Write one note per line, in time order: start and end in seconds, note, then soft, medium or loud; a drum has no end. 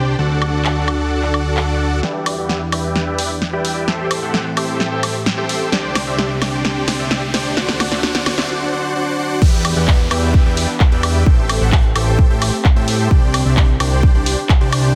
0.00 0.16 C2 medium
0.00 0.17 C3 medium
0.00 0.17 C4 medium
0.00 0.16 D4 medium
0.00 2.00 D4 medium
0.00 0.15 G4 medium
0.00 0.16 G4 medium
0.00 0.16 C5 medium
0.00 0.16 D5 medium
0.00 0.16 G5 medium
0.19 2.01 D2 medium
0.19 2.01 D3 medium
0.19 2.00 D4 medium
0.19 2.01 F#4 medium
0.19 2.00 F#4 medium
0.19 2.01 A4 medium
0.19 2.00 D5 medium
0.19 2.00 F#5 medium
0.42 high woodblock medium
0.65 clap loud
0.88 high woodblock medium
1.22 clap soft
1.34 high woodblock medium
1.57 clap loud
2.03 3.86 E2 medium
2.03 5.69 E3 medium
2.03 3.86 D4 medium
2.03 2.35 G4 medium
2.03 7.53 G4 medium
2.03 2.35 B4 medium
2.03 2.35 D5 medium
2.03 2.35 E5 medium
2.03 2.35 G5 medium
2.03 snare soft
2.03 riser medium
2.26 open hi-hat loud
2.26 high woodblock medium
2.38 2.61 G4 medium
2.38 2.61 B4 medium
2.38 2.61 D5 medium
2.38 2.61 E5 medium
2.38 2.61 F#5 medium
2.49 snare soft
2.72 3.04 G4 medium
2.72 3.04 B4 medium
2.72 3.04 D5 medium
2.72 3.04 E5 medium
2.72 3.04 G5 medium
2.72 open hi-hat medium
2.72 high woodblock medium
2.96 snare medium
3.07 3.30 G4 medium
3.07 3.30 B4 medium
3.07 3.30 D5 medium
3.07 3.30 E5 medium
3.07 3.30 G5 loud
3.19 open hi-hat loud
3.42 snare medium
3.53 3.85 G4 medium
3.53 3.85 B4 medium
3.53 3.85 D5 medium
3.53 3.85 E5 medium
3.53 3.85 G5 medium
3.65 open hi-hat medium
3.88 5.71 A2 medium
3.88 5.71 C4 medium
3.88 4.20 G4 medium
3.88 4.20 A4 medium
3.88 4.20 C5 medium
3.88 4.20 E5 medium
3.88 4.20 G5 medium
3.88 snare medium
4.11 open hi-hat loud
4.11 high woodblock medium
4.22 4.45 G4 medium
4.22 4.45 A4 medium
4.22 4.45 C5 medium
4.22 4.45 E5 medium
4.22 4.45 F#5 loud
4.34 snare medium
4.57 4.89 G4 medium
4.57 4.89 A4 medium
4.57 4.89 C5 medium
4.57 4.89 E5 medium
4.57 4.89 G5 medium
4.57 open hi-hat medium
4.57 high woodblock medium
4.80 snare medium
4.91 5.15 G4 medium
4.91 5.15 A4 medium
4.91 5.15 C5 medium
4.91 5.15 E5 medium
4.91 5.15 G5 loud
5.03 open hi-hat loud
5.03 high woodblock medium
5.26 snare medium
5.38 5.70 G4 medium
5.38 5.70 A4 medium
5.38 5.70 C5 medium
5.38 5.70 E5 medium
5.38 5.70 G5 medium
5.49 open hi-hat medium
5.72 7.55 C2 medium
5.72 7.55 C3 medium
5.72 6.04 D4 medium
5.72 7.55 D4 medium
5.72 6.04 G4 medium
5.72 6.04 C5 medium
5.72 6.04 D5 medium
5.72 6.04 G5 medium
5.72 snare medium
5.95 snare medium
5.95 open hi-hat loud
5.95 high woodblock medium
6.07 6.30 D4 medium
6.07 6.30 G4 medium
6.07 6.30 C5 medium
6.07 6.30 D5 medium
6.07 6.30 E5 medium
6.19 snare medium
6.42 6.63 D4 medium
6.42 6.63 G4 medium
6.42 6.63 C5 medium
6.42 6.63 D5 medium
6.42 6.63 G5 medium
6.42 snare medium
6.42 open hi-hat medium
6.42 high woodblock medium
6.65 6.97 D4 medium
6.65 6.97 G4 medium
6.65 6.97 C5 medium
6.65 6.97 D5 medium
6.65 6.97 G5 medium
6.65 snare medium
6.88 snare medium
6.88 open hi-hat loud
6.99 7.22 D4 medium
6.99 7.22 G4 medium
6.99 7.22 C5 medium
6.99 7.22 D5 medium
6.99 7.22 E5 medium
7.11 snare medium
7.34 7.55 D4 medium
7.34 7.55 G4 medium
7.34 7.55 C5 medium
7.34 7.55 D5 medium
7.34 7.55 G5 medium
7.34 snare medium
7.34 open hi-hat medium
7.57 8.48 D2 medium
7.57 8.48 D3 medium
7.57 7.89 D4 medium
7.57 8.48 F#4 medium
7.57 7.89 F#4 medium
7.57 8.48 A4 medium
7.57 7.89 C5 medium
7.57 7.89 D5 medium
7.57 7.89 F#5 medium
7.57 snare medium
7.69 snare medium
7.80 snare medium
7.80 open hi-hat loud
7.80 high woodblock medium
7.92 8.01 D4 medium
7.92 8.01 F#4 medium
7.92 8.01 C5 medium
7.92 8.01 D5 medium
7.92 8.01 E5 loud
7.92 snare medium
8.03 8.35 D4 medium
8.03 8.35 F#4 medium
8.03 8.35 C5 medium
8.03 8.35 D5 medium
8.03 8.35 F#5 medium
8.03 snare loud
8.15 snare medium
8.26 snare loud
8.26 open hi-hat loud
8.26 high woodblock medium
8.38 8.47 D4 medium
8.38 8.47 F#4 medium
8.38 8.47 C5 medium
8.38 8.47 D5 medium
8.38 8.47 E5 medium
8.38 snare medium
8.49 8.71 D4 medium
8.49 8.71 F#4 medium
8.49 8.71 C5 medium
8.49 8.71 D5 medium
8.49 8.71 F#5 medium
8.72 8.94 D4 medium
8.72 8.94 F#4 medium
8.72 8.94 C5 medium
8.72 8.94 D5 medium
8.72 8.94 F#5 medium
8.95 9.17 D4 medium
8.95 9.17 F#4 medium
8.95 9.17 C5 medium
8.95 9.17 D5 medium
8.95 9.17 F#5 medium
9.19 9.40 D4 medium
9.19 9.40 F#4 medium
9.19 9.40 C5 medium
9.19 9.40 D5 medium
9.19 9.40 F#5 medium
9.42 9.74 E2 medium
9.42 11.24 E3 medium
9.42 11.24 B3 medium
9.42 11.24 D4 medium
9.42 14.92 G4 medium
9.42 9.74 G4 medium
9.42 9.74 B4 medium
9.42 9.74 D5 medium
9.42 9.73 E5 medium
9.42 9.74 G5 medium
9.42 kick loud
9.42 crash loud
9.42 downlifter medium
9.65 open hi-hat loud
9.65 high woodblock medium
9.76 10.09 E2 loud
9.76 9.99 G4 medium
9.76 9.99 B4 medium
9.76 9.99 D5 medium
9.76 9.99 E5 medium
9.76 9.99 F#5 loud
9.88 kick loud
9.88 clap loud
10.11 10.43 E2 loud
10.11 10.43 G4 medium
10.11 10.43 B4 medium
10.11 10.43 D5 medium
10.11 10.43 E5 medium
10.11 10.43 G5 medium
10.11 open hi-hat medium
10.11 high woodblock medium
10.34 kick loud
10.46 10.66 E2 loud
10.46 10.69 G4 medium
10.46 10.69 B4 medium
10.46 10.69 D5 medium
10.46 10.69 E5 medium
10.46 10.69 G5 loud
10.57 open hi-hat loud
10.80 kick loud
10.80 clap loud
10.92 11.24 E2 loud
10.92 11.24 G4 medium
10.92 11.24 B4 medium
10.92 11.24 D5 medium
10.92 11.24 E5 medium
10.92 11.24 G5 medium
11.03 open hi-hat medium
11.03 high woodblock medium
11.26 11.59 A1 medium
11.26 13.09 A3 medium
11.26 14.92 C4 medium
11.26 11.58 G4 medium
11.26 11.58 A4 medium
11.26 11.58 G5 medium
11.26 kick loud
11.49 open hi-hat loud
11.49 high woodblock medium
11.61 11.93 A1 loud
11.61 11.84 G4 medium
11.61 11.84 A4 medium
11.61 11.84 C5 medium
11.61 11.84 E5 medium
11.61 11.84 F#5 loud
11.72 kick loud
11.72 clap loud
11.95 12.28 A1 loud
11.95 12.27 G4 medium
11.95 12.27 A4 medium
11.95 12.27 C5 medium
11.95 12.27 E5 medium
11.95 12.27 G5 medium
11.95 open hi-hat loud
11.95 high woodblock medium
12.19 kick loud
12.30 12.51 A1 loud
12.30 12.53 G4 medium
12.30 12.53 A4 medium
12.30 12.53 C5 medium
12.30 12.53 E5 medium
12.30 12.53 G5 loud
12.42 open hi-hat loud
12.42 high woodblock medium
12.65 kick loud
12.65 clap loud
12.76 13.09 A2 loud
12.76 13.08 G4 medium
12.76 13.08 A4 medium
12.76 13.08 C5 medium
12.76 13.08 E5 medium
12.76 13.08 G5 medium
12.88 open hi-hat loud
13.11 13.43 C2 loud
13.11 14.94 C3 medium
13.11 13.43 D4 medium
13.11 14.94 D4 medium
13.11 13.43 G4 medium
13.11 13.43 C5 medium
13.11 13.43 D5 medium
13.11 13.43 G5 medium
13.11 kick loud
13.34 open hi-hat loud
13.34 high woodblock medium
13.45 13.78 C2 loud
13.45 13.68 D4 medium
13.45 13.68 G4 medium
13.45 13.68 C5 medium
13.45 13.68 D5 medium
13.45 13.68 E5 loud
13.57 kick loud
13.57 clap loud
13.80 14.12 C2 loud
13.80 14.12 D4 medium
13.80 14.12 G4 medium
13.80 14.12 C5 medium
13.80 14.12 D5 medium
13.80 14.12 G5 medium
13.80 open hi-hat loud
13.80 high woodblock medium
14.03 kick loud
14.15 14.35 C2 loud
14.15 14.38 D4 medium
14.15 14.38 G4 medium
14.15 14.38 C5 medium
14.15 14.38 D5 medium
14.15 14.38 G5 loud
14.26 open hi-hat loud
14.49 kick loud
14.49 clap loud
14.61 14.93 C2 medium
14.61 14.93 D4 medium
14.61 14.93 G4 medium
14.61 14.93 C5 medium
14.61 14.93 D5 medium
14.61 14.93 G5 medium
14.73 open hi-hat loud
14.73 high woodblock medium